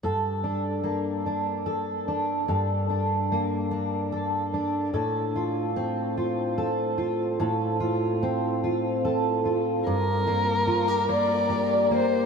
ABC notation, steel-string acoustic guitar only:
X:1
M:6/8
L:1/16
Q:3/8=49
K:Gm
V:1 name="Steel-string acoustic guitar"
[G,,A]2 D2 B,2 D2 A2 D2 | [G,,A]2 D2 B,2 D2 A2 D2 | [A,,A]2 F2 C2 F2 A2 F2 | [A,,A]2 F2 C2 F2 A2 F2 |
G,,2 B,2 F G B,2 G2 B,2 |]